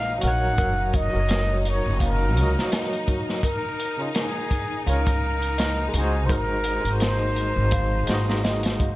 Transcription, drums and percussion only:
0.21 closed hi-hat medium
0.58 kick loud
0.58 closed hi-hat medium
0.93 kick loud
0.93 closed hi-hat medium
1.29 snare loud
1.29 closed hi-hat loud
1.65 closed hi-hat medium
2.00 kick loud
2.00 closed hi-hat medium
2.37 closed hi-hat medium
2.59 snare medium
2.72 snare loud
2.72 closed hi-hat medium
2.93 closed hi-hat soft
3.08 kick loud
3.08 closed hi-hat medium
3.29 snare soft
3.43 kick loud
3.43 closed hi-hat medium
3.80 closed hi-hat medium
4.15 snare loud
4.15 closed hi-hat medium
4.51 kick medium
4.51 closed hi-hat medium
4.87 closed hi-hat medium
5.07 kick loud
5.07 closed hi-hat medium
5.42 closed hi-hat medium
5.58 snare loud
5.58 closed hi-hat medium
5.94 closed hi-hat medium
6.29 kick loud
6.29 closed hi-hat medium
6.64 closed hi-hat medium
6.85 closed hi-hat soft
7.00 snare loud
7.00 closed hi-hat medium
7.36 closed hi-hat medium
7.71 kick loud
7.71 closed hi-hat loud
8.07 snare loud
8.07 closed hi-hat medium
8.30 snare medium
8.44 snare loud
8.44 closed hi-hat medium
8.63 snare loud
8.63 closed hi-hat medium
8.80 kick loud
8.80 closed hi-hat medium

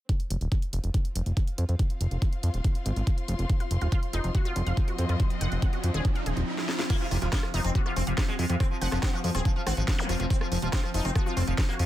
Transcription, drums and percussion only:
0.09 kick loud
0.09 closed hi-hat medium
0.20 closed hi-hat soft
0.30 closed hi-hat loud
0.41 closed hi-hat soft
0.52 kick loud
0.52 closed hi-hat medium
0.62 closed hi-hat soft
0.73 closed hi-hat medium
0.84 closed hi-hat soft
0.94 kick loud
0.94 closed hi-hat medium
1.05 closed hi-hat soft
1.16 closed hi-hat loud
1.26 closed hi-hat soft
1.37 kick loud
1.37 closed hi-hat medium
1.47 closed hi-hat soft
1.58 closed hi-hat medium
1.69 closed hi-hat soft
1.79 kick loud
1.79 closed hi-hat medium
1.90 closed hi-hat soft
2.01 closed hi-hat medium
2.11 closed hi-hat soft
2.22 kick loud
2.22 closed hi-hat medium
2.33 closed hi-hat soft
2.43 closed hi-hat loud
2.54 closed hi-hat soft
2.64 kick loud
2.64 closed hi-hat medium
2.75 closed hi-hat soft
2.86 closed hi-hat medium
2.96 closed hi-hat soft
3.07 kick loud
3.07 closed hi-hat medium
3.18 closed hi-hat soft
3.28 closed hi-hat medium
3.39 closed hi-hat soft
3.50 kick loud
3.50 closed hi-hat medium
3.60 closed hi-hat soft
3.71 closed hi-hat medium
3.81 closed hi-hat soft
3.92 kick loud
3.92 closed hi-hat medium
4.03 closed hi-hat soft
4.13 closed hi-hat medium
4.24 closed hi-hat soft
4.35 kick loud
4.35 closed hi-hat medium
4.45 closed hi-hat soft
4.56 closed hi-hat medium
4.67 closed hi-hat soft
4.77 kick loud
4.77 closed hi-hat medium
4.88 closed hi-hat soft
4.98 closed hi-hat medium
5.09 closed hi-hat soft
5.20 kick loud
5.20 closed hi-hat medium
5.30 closed hi-hat soft
5.41 closed hi-hat medium
5.52 closed hi-hat soft
5.62 kick loud
5.62 closed hi-hat medium
5.73 closed hi-hat soft
5.84 closed hi-hat medium
5.94 closed hi-hat soft
6.05 kick loud
6.05 closed hi-hat medium
6.15 closed hi-hat soft
6.26 closed hi-hat medium
6.37 closed hi-hat soft
6.58 snare medium
6.69 snare medium
6.79 snare medium
6.90 kick loud
6.90 closed hi-hat medium
6.90 crash loud
7.11 cross-stick soft
7.11 open hi-hat loud
7.22 closed hi-hat medium
7.33 kick loud
7.33 snare loud
7.33 closed hi-hat medium
7.43 cross-stick medium
7.54 open hi-hat medium
7.64 closed hi-hat medium
7.75 kick loud
7.75 closed hi-hat medium
7.86 cross-stick soft
7.96 open hi-hat loud
8.07 closed hi-hat medium
8.18 kick loud
8.18 cross-stick medium
8.18 snare loud
8.18 closed hi-hat medium
8.39 open hi-hat medium
8.50 closed hi-hat medium
8.60 kick loud
8.60 cross-stick soft
8.60 closed hi-hat medium
8.81 open hi-hat loud
8.92 cross-stick medium
8.92 snare soft
8.92 closed hi-hat medium
9.03 kick loud
9.03 snare loud
9.03 closed hi-hat medium
9.24 open hi-hat medium
9.35 cross-stick soft
9.35 closed hi-hat medium
9.45 kick loud
9.45 closed hi-hat medium
9.67 cross-stick medium
9.67 open hi-hat loud
9.77 closed hi-hat medium
9.88 kick loud
9.88 snare loud
9.88 closed hi-hat medium
10.09 cross-stick soft
10.09 open hi-hat medium
10.20 closed hi-hat medium
10.30 kick loud
10.30 closed hi-hat medium
10.41 cross-stick medium
10.52 open hi-hat loud
10.62 closed hi-hat medium
10.73 kick loud
10.73 snare loud
10.73 closed hi-hat medium
10.84 cross-stick soft
10.94 open hi-hat loud
11.05 closed hi-hat medium
11.15 kick loud
11.15 cross-stick medium
11.15 closed hi-hat medium
11.37 open hi-hat loud
11.47 closed hi-hat medium
11.58 kick loud
11.58 cross-stick soft
11.58 snare loud
11.58 closed hi-hat medium
11.79 open hi-hat medium

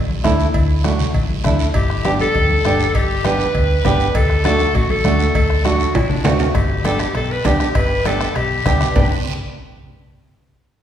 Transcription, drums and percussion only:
0.10 high conga medium
0.24 bombo low medium
0.24 bombo rim medium
0.24 high conga medium
0.24 low timbale medium
0.24 short guiro medium
0.40 short guiro medium
0.54 bombo low medium
0.54 cowbell medium
0.54 high conga soft
0.54 long guiro medium
0.84 bombo rim medium
0.84 high conga medium
0.84 short guiro medium
0.99 low conga medium
0.99 short guiro medium
1.14 bombo low medium
1.14 cowbell medium
1.14 high conga soft
1.14 long guiro medium
1.30 high conga medium
1.44 bombo low medium
1.44 bombo rim medium
1.44 high conga medium
1.44 low conga medium
1.44 short guiro medium
1.59 short guiro medium
1.74 bombo low medium
1.74 cowbell loud
1.74 high conga soft
1.74 long guiro medium
1.90 bombo rim medium
2.05 bombo rim medium
2.05 high conga loud
2.05 short guiro medium
2.20 high conga medium
2.20 short guiro medium
2.35 bombo low medium
2.35 cowbell medium
2.35 high conga soft
2.35 long guiro medium
2.50 high conga medium
2.65 bombo rim medium
2.65 high conga medium
2.65 short guiro medium
2.80 short guiro medium
2.95 bombo low medium
2.95 cowbell medium
2.95 high conga soft
2.95 long guiro medium
3.25 bombo rim medium
3.25 high conga medium
3.25 short guiro medium
3.40 short guiro medium
3.55 bombo low medium
3.55 cowbell medium
3.55 high conga soft
3.55 long guiro medium
3.85 bombo low medium
3.85 bombo rim medium
3.85 high conga medium
3.85 low conga loud
3.85 low timbale medium
3.85 short guiro medium
4.00 short guiro medium
4.15 bombo low medium
4.15 cowbell loud
4.15 high conga soft
4.15 long guiro medium
4.30 bombo rim medium
4.44 bombo rim medium
4.44 high conga medium
4.44 short guiro medium
4.59 short guiro medium
4.74 bombo low medium
4.74 cowbell medium
4.74 high conga soft
4.74 long guiro medium
4.90 high conga medium
5.04 bombo rim medium
5.04 high conga medium
5.04 short guiro medium
5.19 short guiro medium
5.35 bombo low medium
5.35 cowbell loud
5.35 high conga soft
5.35 long guiro medium
5.50 bombo rim medium
5.65 bombo rim medium
5.65 high conga medium
5.65 short guiro medium
5.80 short guiro medium
5.94 bombo low medium
5.94 cowbell medium
5.94 low conga medium
5.94 high timbale loud
5.94 long guiro medium
6.10 low conga loud
6.25 bombo rim medium
6.25 low conga loud
6.25 low timbale loud
6.25 short guiro medium
6.39 low conga medium
6.39 low timbale medium
6.39 short guiro medium
6.54 bombo low medium
6.54 bombo rim medium
6.54 cowbell loud
6.54 high conga soft
6.54 long guiro medium
6.85 bombo rim medium
6.85 cowbell medium
6.85 high conga medium
6.85 short guiro medium
6.99 bombo rim medium
6.99 short guiro medium
7.15 bombo rim medium
7.15 cowbell medium
7.15 high conga soft
7.15 long guiro medium
7.45 bombo low medium
7.45 bombo rim medium
7.45 cowbell medium
7.45 high conga loud
7.45 low timbale medium
7.45 short guiro medium
7.60 bombo rim medium
7.60 short guiro medium
7.75 bombo low medium
7.75 bombo rim medium
7.75 cowbell loud
7.75 high conga soft
7.75 long guiro medium
8.05 bombo rim medium
8.05 cowbell medium
8.05 high conga medium
8.05 short guiro medium
8.21 bombo rim medium
8.21 short guiro medium
8.36 bombo rim medium
8.36 cowbell medium
8.36 high conga soft
8.36 long guiro medium
8.66 bombo low medium
8.66 bombo rim medium
8.66 cowbell medium
8.66 high conga medium
8.66 low conga medium
8.66 short guiro medium
8.81 bombo rim medium
8.81 low conga medium
8.81 short guiro medium
8.96 bombo low loud
8.96 low conga loud
8.96 low timbale medium
8.96 long guiro loud

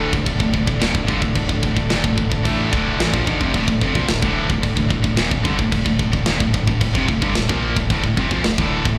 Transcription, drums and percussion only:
0.13 kick loud
0.26 kick medium
0.26 crash medium
0.40 kick medium
0.54 kick medium
0.67 kick medium
0.82 snare loud
0.82 crash medium
0.95 kick medium
1.08 kick medium
1.22 kick medium
1.35 kick medium
1.35 crash medium
1.49 kick medium
1.63 kick medium
1.77 kick medium
1.90 snare loud
1.90 crash medium
2.04 kick loud
2.18 kick medium
2.32 kick medium
2.45 kick loud
2.45 crash medium
2.73 kick loud
3.00 snare loud
3.00 crash medium
3.14 kick loud
3.27 kick medium
3.41 kick medium
3.54 kick medium
3.54 crash medium
3.68 kick medium
3.81 kick medium
3.95 kick medium
4.08 snare loud
4.08 crash medium
4.22 kick loud
4.50 kick loud
4.63 kick medium
4.63 crash medium
4.77 kick medium
4.90 kick medium
5.04 kick medium
5.17 snare loud
5.17 crash medium
5.31 kick medium
5.45 kick medium
5.59 kick loud
5.72 kick loud
5.72 crash medium
5.86 kick loud
5.99 kick medium
6.13 kick medium
6.26 snare loud
6.26 crash medium
6.40 kick loud
6.54 kick medium
6.67 kick medium
6.81 kick medium
6.81 crash medium
6.95 kick loud
7.08 kick medium
7.22 kick loud
7.35 snare loud
7.35 crash medium
7.49 kick loud
7.76 kick loud
7.90 kick loud
7.90 crash medium
8.04 kick medium
8.17 kick medium
8.31 kick medium
8.44 snare loud
8.44 crash medium
8.58 kick loud
8.85 kick loud

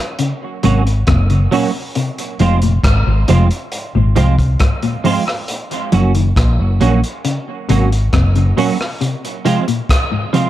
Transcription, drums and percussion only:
0.19 closed hi-hat medium
0.63 closed hi-hat medium
0.87 closed hi-hat medium
1.07 kick loud
1.07 cross-stick loud
1.07 closed hi-hat medium
1.30 closed hi-hat soft
1.52 open hi-hat medium
1.95 closed hi-hat medium
2.18 closed hi-hat medium
2.39 closed hi-hat medium
2.62 closed hi-hat medium
2.84 kick loud
2.84 cross-stick loud
2.84 closed hi-hat medium
3.28 closed hi-hat medium
3.51 closed hi-hat medium
3.72 closed hi-hat medium
4.16 closed hi-hat medium
4.39 kick medium
4.39 closed hi-hat medium
4.60 kick loud
4.60 cross-stick loud
4.60 closed hi-hat medium
4.82 closed hi-hat soft
5.05 open hi-hat medium
5.28 cross-stick medium
5.48 closed hi-hat medium
5.71 closed hi-hat medium
5.92 closed hi-hat medium
6.15 closed hi-hat medium
6.36 kick loud
6.36 cross-stick loud
6.36 closed hi-hat medium
6.81 closed hi-hat medium
7.04 closed hi-hat medium
7.25 closed hi-hat medium
7.69 closed hi-hat medium
7.92 closed hi-hat medium
8.13 kick loud
8.13 cross-stick loud
8.13 closed hi-hat medium
8.35 closed hi-hat soft
8.58 open hi-hat medium
8.81 cross-stick medium
9.01 closed hi-hat medium
9.25 closed hi-hat medium
9.46 closed hi-hat medium
9.68 closed hi-hat medium
9.89 kick loud
9.89 cross-stick loud
9.89 closed hi-hat medium
10.34 closed hi-hat medium

